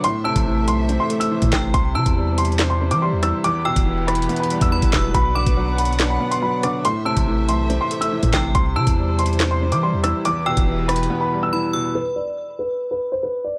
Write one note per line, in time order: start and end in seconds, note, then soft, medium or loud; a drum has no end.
0.03 1.10 A2 medium
0.03 1.72 A3 medium
0.03 1.72 A4 medium
0.03 3.41 C5 medium
0.03 1.72 E5 medium
0.03 0.24 C6 loud
0.03 closed hi-hat medium
0.24 1.31 C3 medium
0.24 0.85 A5 medium
0.24 0.65 E6 medium
0.36 0.69 A1 loud
0.36 kick loud
0.36 closed hi-hat medium
0.46 1.30 E3 medium
0.68 0.98 B1 loud
0.68 0.98 C6 medium
0.68 closed hi-hat medium
0.89 1.74 C4 medium
0.89 closed hi-hat medium
1.00 1.20 C6 medium
1.10 1.74 A3 medium
1.10 closed hi-hat medium
1.20 1.70 E6 medium
1.20 closed hi-hat medium
1.31 1.74 E3 medium
1.42 1.52 A2 loud
1.42 kick medium
1.42 closed hi-hat medium
1.52 1.73 A1 loud
1.52 1.72 C3 medium
1.52 1.73 G5 medium
1.52 kick loud
1.52 cross-stick medium
1.52 snare loud
1.52 clap medium
1.74 1.97 C2 loud
1.74 2.80 C3 medium
1.74 3.43 C3 medium
1.74 3.42 G3 medium
1.74 5.11 E4 medium
1.74 1.94 C6 loud
1.74 kick loud
1.74 closed hi-hat medium
1.95 2.05 C3 loud
1.95 3.02 E3 medium
1.95 2.55 A5 medium
1.95 2.35 E6 medium
2.06 2.93 E2 loud
2.06 kick loud
2.06 closed hi-hat medium
2.16 3.00 G3 medium
2.38 2.68 C6 medium
2.38 closed hi-hat medium
2.45 closed hi-hat medium
2.52 closed hi-hat soft
2.59 3.44 C5 medium
2.59 snare loud
2.59 clap medium
2.59 closed hi-hat medium
2.70 2.90 C6 medium
2.81 3.44 C4 medium
2.91 3.14 E3 loud
2.91 3.01 D6 medium
2.91 closed hi-hat medium
3.02 3.44 G3 medium
3.02 3.22 C6 medium
3.12 3.33 E2 loud
3.23 3.44 E3 medium
3.23 3.43 E6 medium
3.23 cross-stick medium
3.23 closed hi-hat medium
3.44 4.51 E2 medium
3.44 5.13 E3 medium
3.44 5.13 G4 medium
3.44 6.81 B4 medium
3.44 3.64 D6 loud
3.44 closed hi-hat medium
3.65 4.72 B2 medium
3.65 4.25 G5 medium
3.65 4.05 E6 medium
3.76 4.27 E1 loud
3.76 kick loud
3.76 closed hi-hat medium
3.86 4.70 E3 medium
4.07 4.38 B5 medium
4.07 cross-stick loud
4.07 closed hi-hat medium
4.15 closed hi-hat medium
4.22 closed hi-hat medium
4.29 5.14 B3 medium
4.29 closed hi-hat medium
4.36 4.60 B5 medium
4.36 closed hi-hat medium
4.43 closed hi-hat medium
4.50 5.15 G3 medium
4.50 closed hi-hat medium
4.61 4.82 E2 loud
4.61 5.12 E6 medium
4.61 kick medium
4.61 closed hi-hat medium
4.72 5.14 E3 loud
4.72 4.92 B5 medium
4.82 4.93 G1 loud
4.82 kick medium
4.82 closed hi-hat medium
4.93 5.14 E1 loud
4.93 5.13 B2 medium
4.93 5.13 E6 medium
4.93 kick loud
4.93 snare loud
4.93 clap medium
5.14 5.45 B1 loud
5.14 6.21 B2 medium
5.14 6.83 B3 medium
5.14 6.83 D5 medium
5.14 6.83 F#5 medium
5.14 5.34 B5 loud
5.14 kick loud
5.14 closed hi-hat medium
5.35 6.42 D3 medium
5.35 5.96 B5 medium
5.35 5.75 D6 medium
5.46 6.18 B1 loud
5.46 kick loud
5.46 closed hi-hat medium
5.57 6.40 F#3 medium
5.78 6.08 B5 medium
5.78 closed hi-hat medium
5.85 closed hi-hat medium
5.93 closed hi-hat soft
6.00 6.85 D4 medium
6.00 snare loud
6.00 clap medium
6.00 closed hi-hat medium
6.10 6.30 B5 medium
6.20 6.84 B3 medium
6.31 6.41 C6 medium
6.31 closed hi-hat medium
6.42 6.84 F#3 medium
6.42 6.62 B5 medium
6.63 6.85 D3 medium
6.63 6.84 D6 medium
6.63 cross-stick medium
6.63 closed hi-hat medium
6.84 7.91 A2 medium
6.84 8.53 A3 medium
6.84 8.53 A4 medium
6.84 8.53 C5 medium
6.84 8.53 E5 medium
6.84 7.05 C6 loud
6.84 closed hi-hat medium
7.05 8.12 C3 medium
7.05 7.66 A5 medium
7.05 7.46 E6 medium
7.17 7.50 A1 loud
7.17 kick loud
7.17 closed hi-hat medium
7.27 8.11 E3 medium
7.48 7.79 B1 loud
7.48 7.79 C6 medium
7.48 closed hi-hat medium
7.69 8.55 C4 medium
7.69 closed hi-hat medium
7.81 8.01 C6 medium
7.91 8.55 A3 medium
7.91 closed hi-hat medium
8.01 8.51 E6 medium
8.01 closed hi-hat medium
8.12 8.55 E3 loud
8.23 8.33 A2 loud
8.23 kick medium
8.23 closed hi-hat medium
8.33 8.54 A1 loud
8.33 8.53 C3 medium
8.33 8.54 G5 medium
8.33 kick loud
8.33 cross-stick medium
8.33 snare loud
8.33 clap medium
8.55 8.78 C2 loud
8.55 9.61 C3 loud
8.55 10.23 C3 medium
8.55 10.23 G3 medium
8.55 11.92 E4 medium
8.55 10.23 C5 medium
8.55 8.75 C6 loud
8.55 kick loud
8.55 closed hi-hat medium
8.76 8.86 C3 loud
8.76 9.83 E3 medium
8.76 9.36 A5 medium
8.76 9.16 E6 medium
8.87 9.73 E2 loud
8.87 kick loud
8.87 closed hi-hat medium
8.97 9.81 G3 medium
9.19 9.49 C6 medium
9.19 closed hi-hat medium
9.26 closed hi-hat medium
9.33 closed hi-hat soft
9.40 10.25 C5 medium
9.40 snare loud
9.40 clap medium
9.40 closed hi-hat medium
9.51 9.71 C6 medium
9.62 10.25 C4 medium
9.72 9.95 E3 loud
9.72 9.82 D6 medium
9.72 closed hi-hat medium
9.82 10.25 G3 medium
9.82 10.03 C6 medium
9.93 10.13 E2 loud
10.03 10.25 E3 medium
10.03 10.24 E6 medium
10.03 cross-stick medium
10.03 closed hi-hat medium
10.25 11.32 E2 medium
10.25 11.94 E3 medium
10.25 11.94 G4 medium
10.25 11.94 B4 medium
10.25 10.45 D6 loud
10.25 closed hi-hat medium
10.46 11.53 B2 medium
10.46 11.06 G5 medium
10.46 10.86 E6 medium
10.57 11.08 E1 loud
10.57 kick loud
10.57 closed hi-hat medium
10.67 11.51 E3 medium
10.88 11.18 B5 medium
10.88 cross-stick loud
10.88 closed hi-hat medium
10.96 closed hi-hat medium
11.03 closed hi-hat medium
11.10 11.95 B3 medium
11.21 11.41 B5 medium
11.32 11.95 G3 medium
11.43 11.92 E6 medium
11.53 11.95 E3 loud
11.53 11.73 B5 medium
11.73 11.95 B2 medium
11.73 11.94 E6 loud
11.95 12.15 B4 loud
12.16 12.56 D5 medium
12.59 12.89 B4 medium
12.91 13.11 B4 medium
13.12 13.22 C5 medium
13.23 13.43 B4 medium
13.44 13.59 D5 medium